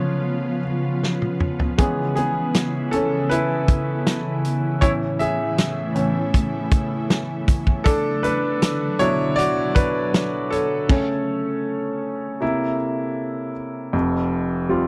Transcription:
0.00 1.80 C#3 soft
0.00 7.83 C#3 medium
0.00 1.76 F3 medium
0.00 1.81 F3 soft
0.00 1.80 B3 medium
0.00 10.87 B3 medium
0.00 0.61 F4 medium
0.00 1.76 F4 medium
0.00 0.59 C#5 loud
1.03 snare medium
1.22 high tom soft
1.40 mid tom medium
1.60 floor tom medium
1.78 2.29 E3 soft
1.78 7.83 E3 medium
1.78 2.29 G#3 soft
1.78 2.15 B3 medium
1.78 2.30 C#4 medium
1.78 4.80 E4 medium
1.78 2.14 G#4 medium
1.78 kick medium
1.78 closed hi-hat medium
2.16 2.89 B3 medium
2.16 2.94 G#4 medium
2.16 closed hi-hat medium
2.54 snare medium
2.54 closed hi-hat medium
2.91 3.29 C#4 medium
2.91 3.27 A4 medium
2.91 closed hi-hat medium
3.30 4.79 E4 medium
3.30 4.86 B4 medium
3.30 closed hi-hat medium
3.68 kick medium
3.68 closed hi-hat medium
4.07 snare loud
4.07 closed hi-hat medium
4.45 closed hi-hat medium
4.81 5.93 A2 medium
4.81 5.93 E3 soft
4.81 7.84 A3 medium
4.81 5.94 C#4 medium
4.81 4.91 E4 medium
4.81 7.84 E4 medium
4.81 4.90 C#5 loud
4.81 kick medium
4.81 closed hi-hat medium
5.19 6.68 G#4 medium
5.19 6.68 E5 medium
5.19 closed hi-hat medium
5.58 snare medium
5.58 closed hi-hat medium
5.95 6.30 A2 soft
5.95 6.30 E3 soft
5.95 6.30 C#4 medium
5.95 closed hi-hat medium
6.34 kick medium
6.34 closed hi-hat medium
6.71 kick medium
6.71 closed hi-hat medium
7.10 snare loud
7.10 closed hi-hat medium
7.48 kick medium
7.48 closed hi-hat medium
7.67 kick medium
7.84 10.88 D3 medium
7.84 10.88 F#3 medium
7.84 8.21 D4 medium
7.84 8.24 A4 medium
7.84 kick medium
7.84 closed hi-hat medium
8.23 8.96 D4 medium
8.23 9.02 B4 medium
8.23 closed hi-hat medium
8.62 snare medium
8.62 closed hi-hat medium
8.99 9.50 B2 medium
8.99 9.51 F#3 medium
8.99 9.51 D4 medium
8.99 9.10 E4 medium
8.99 9.08 C#5 loud
8.99 closed hi-hat medium
9.36 9.73 F#4 medium
9.36 9.76 D5 loud
9.36 closed hi-hat medium
9.75 10.48 D4 medium
9.75 10.54 B4 medium
9.75 kick medium
9.75 closed hi-hat medium
10.14 snare loud
10.14 closed hi-hat medium
10.50 12.75 A4 medium
10.50 12.76 C#5 medium
10.50 closed hi-hat medium
10.89 12.37 C#3 soft
10.89 12.38 A3 soft
10.89 12.38 C#4 medium
10.89 kick medium
10.89 crash medium
12.40 13.51 C3 medium
12.40 13.51 A#3 soft
12.40 13.52 E4 medium
13.93 14.88 F1 medium
13.93 14.88 F2 medium
14.69 14.88 G3 medium
14.69 14.88 C4 soft
14.69 14.88 F4 medium

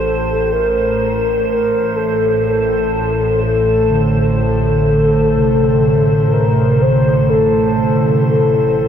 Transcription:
0.00 8.88 A1 medium
0.00 8.88 A2 medium
0.00 0.52 A4 medium
0.00 4.37 C5 medium
0.52 1.45 A#4 medium
1.50 1.98 A#4 medium
1.96 2.45 A4 medium
2.48 3.40 A4 medium
3.43 4.36 A4 loud
3.91 5.56 D3 medium
4.38 6.34 A4 medium
4.38 8.88 C5 medium
5.37 8.88 C3 medium
6.33 6.84 A#4 medium
6.82 7.29 C5 loud
7.30 8.23 A4 medium
8.29 8.88 A4 medium

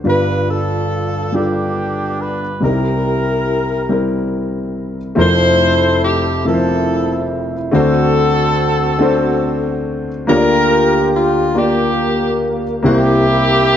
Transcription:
0.04 2.58 G1 soft
0.04 2.57 G2 soft
0.04 1.12 G3 medium
0.04 1.13 D4 medium
0.04 1.13 F4 medium
0.04 1.14 B4 medium
0.04 0.46 B4 medium
0.08 0.50 D4 medium
0.08 0.50 F4 medium
0.50 1.34 D4 medium
0.50 1.74 F4 medium
0.50 1.31 A4 medium
1.32 2.40 G3 soft
1.32 2.59 B3 soft
1.32 2.41 D4 soft
1.32 2.58 D4 medium
1.32 2.41 F4 soft
1.32 2.19 G4 medium
1.32 2.42 A4 medium
2.20 2.62 B4 medium
2.60 5.14 C2 soft
2.60 5.14 C3 soft
2.60 3.68 G3 medium
2.60 3.69 C4 medium
2.60 2.69 D#4 soft
2.60 4.30 E4 medium
2.60 4.30 G4 medium
2.60 4.29 A#4 medium
2.60 3.70 A#4 medium
2.69 3.73 E4 medium
3.89 4.97 G3 medium
3.89 4.97 C4 medium
3.89 4.97 E4 medium
3.89 4.98 A#4 medium
5.15 7.69 F1 medium
5.15 7.69 F2 medium
5.15 6.25 F3 medium
5.15 6.24 A3 medium
5.15 6.24 C4 medium
5.15 6.24 E4 medium
5.15 5.25 A#4 medium
5.15 6.00 C5 loud
5.19 6.43 E4 medium
5.19 6.43 A4 medium
5.25 6.28 C5 medium
6.05 6.44 G4 medium
6.45 7.53 F3 medium
6.45 7.52 A3 medium
6.45 7.53 C4 medium
6.45 7.70 C4 medium
6.45 7.53 E4 medium
6.45 7.71 E4 medium
6.45 7.28 A4 medium
6.45 6.53 A#4 medium
6.54 7.57 C5 medium
7.71 10.25 D2 medium
7.71 10.25 D3 medium
7.71 8.80 A3 medium
7.71 8.80 C4 medium
7.71 9.83 C4 medium
7.71 8.80 D4 medium
7.71 8.81 F#4 medium
7.71 9.83 F#4 medium
7.71 9.83 A4 loud
7.71 8.81 C5 medium
8.99 10.07 A3 medium
8.99 10.07 C4 medium
8.99 10.08 D4 medium
8.99 10.08 F#4 medium
8.99 10.09 C5 medium
10.27 12.81 D2 medium
10.27 12.81 D3 medium
10.27 11.35 A#3 medium
10.27 11.36 D4 medium
10.27 11.36 F4 medium
10.27 11.14 F4 medium
10.27 11.36 G4 medium
10.27 11.54 G4 medium
10.27 11.10 A#4 loud
10.27 10.37 C#5 medium
10.37 11.40 D5 medium
11.15 11.57 F4 medium
11.54 12.63 A#3 medium
11.54 12.63 D4 medium
11.54 12.64 F4 medium
11.54 12.64 G4 medium
11.54 12.65 D5 medium
11.59 12.82 A#3 medium
11.59 12.43 G4 medium
12.83 13.77 C2 medium
12.83 13.77 C3 medium
12.83 13.77 A#3 medium
12.83 13.77 C4 medium
12.83 13.77 E4 medium
12.83 13.77 G4 medium
12.83 13.77 G4 loud
12.83 13.77 C5 medium
12.87 13.77 A#3 medium
12.87 13.77 E4 medium

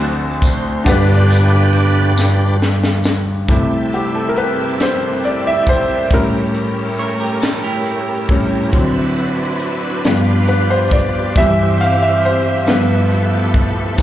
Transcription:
0.00 0.82 D2 medium
0.00 0.13 D3 medium
0.00 0.82 D3 medium
0.00 0.13 F#3 medium
0.00 0.85 A3 medium
0.00 0.13 C4 medium
0.00 0.85 C4 medium
0.00 0.83 D4 medium
0.00 0.89 F#4 medium
0.00 0.38 A4 medium
0.00 0.86 C5 medium
0.42 0.83 C5 loud
0.42 kick medium
0.42 ride soft
0.42 tambourine medium
0.84 3.45 G1 medium
0.84 2.12 G2 medium
0.84 3.44 G2 medium
0.84 2.13 D3 soft
0.84 2.13 B3 medium
0.84 3.43 D4 medium
0.84 2.57 D4 medium
0.84 3.45 G4 medium
0.84 2.57 G4 medium
0.84 2.57 B4 loud
0.84 kick loud
0.84 ride medium
0.84 tambourine medium
0.89 3.46 B4 medium
1.30 ride soft
1.30 tambourine soft
1.73 ride soft
2.18 snare medium
2.18 tambourine medium
2.62 snare medium
2.84 snare medium
3.04 snare loud
3.04 tambourine soft
3.48 4.06 C3 medium
3.48 6.09 G3 medium
3.48 4.07 A3 soft
3.48 6.07 A3 medium
3.48 6.09 C4 medium
3.48 6.08 E4 medium
3.48 4.07 E4 medium
3.48 6.09 E4 soft
3.48 8.70 G4 medium
3.48 6.09 A4 medium
3.48 kick loud
3.48 closed hi-hat medium
3.93 4.15 G4 medium
3.93 closed hi-hat soft
4.15 4.30 A4 medium
4.29 4.36 A#4 medium
4.37 4.77 B4 medium
4.37 closed hi-hat soft
4.80 5.26 C5 medium
4.80 snare loud
4.80 closed hi-hat medium
5.24 5.47 D5 medium
5.24 closed hi-hat soft
5.47 5.69 E5 medium
5.67 5.79 C5 medium
5.67 kick medium
5.67 closed hi-hat soft
6.08 8.69 A3 medium
6.08 8.71 A3 medium
6.08 8.70 C#4 medium
6.08 8.71 C#4 soft
6.08 8.71 G4 medium
6.08 8.70 A#4 medium
6.08 8.71 A#4 medium
6.08 kick loud
6.08 closed hi-hat medium
6.13 7.39 A2 medium
6.13 7.39 G3 soft
6.13 7.40 C#4 medium
6.13 6.23 A#4 medium
6.55 closed hi-hat soft
6.98 7.19 A#4 medium
6.98 7.20 C#5 medium
6.98 closed hi-hat soft
7.20 7.41 G4 medium
7.20 7.41 A#4 medium
7.42 7.63 A4 medium
7.42 snare loud
7.42 closed hi-hat medium
7.64 8.69 E4 medium
7.64 8.69 G4 medium
7.86 closed hi-hat soft
8.29 8.70 A2 medium
8.29 8.70 G3 soft
8.29 8.71 C#4 medium
8.29 kick medium
8.29 closed hi-hat soft
8.71 10.01 D3 medium
8.71 10.02 F#3 medium
8.71 10.01 F#3 medium
8.71 10.02 C4 medium
8.71 11.32 D4 medium
8.71 11.33 D4 medium
8.71 10.02 E4 medium
8.71 10.03 E4 medium
8.71 10.02 F#4 medium
8.71 11.32 B4 medium
8.71 kick loud
8.71 closed hi-hat medium
8.75 10.01 C4 medium
9.17 closed hi-hat soft
9.60 closed hi-hat soft
10.03 10.63 G2 medium
10.03 10.63 F3 soft
10.03 12.64 G3 medium
10.03 10.64 B3 medium
10.03 11.34 F4 medium
10.03 13.93 G4 medium
10.03 snare loud
10.03 closed hi-hat medium
10.47 10.71 B4 medium
10.47 closed hi-hat medium
10.70 10.93 C5 medium
10.91 11.37 D5 medium
10.91 kick medium
10.91 closed hi-hat soft
11.35 11.94 G2 medium
11.35 11.94 E3 medium
11.35 12.65 G3 medium
11.35 11.95 G3 medium
11.35 12.65 C4 medium
11.35 14.02 E4 medium
11.35 12.65 C5 medium
11.35 12.66 C5 medium
11.35 13.95 E5 medium
11.35 11.82 E5 loud
11.35 kick loud
11.35 closed hi-hat medium
11.80 12.03 F5 medium
11.80 closed hi-hat soft
12.03 12.24 E5 medium
12.23 12.69 C5 medium
12.23 closed hi-hat soft
12.66 13.95 G2 soft
12.66 13.94 F3 soft
12.66 13.97 F3 medium
12.66 14.02 A3 medium
12.66 13.97 B3 medium
12.66 13.95 B3 medium
12.66 13.96 F4 medium
12.66 13.96 G4 medium
12.66 14.02 A4 medium
12.66 13.97 B4 medium
12.66 13.09 B4 medium
12.66 snare loud
12.66 closed hi-hat medium
13.11 closed hi-hat soft
13.54 kick medium
13.54 closed hi-hat soft
13.96 14.02 C3 medium
13.96 14.02 E3 soft
13.96 14.02 C4 medium
13.96 14.02 D4 medium
13.96 14.02 E4 medium
13.96 14.02 C5 medium
13.96 kick loud
13.96 closed hi-hat medium

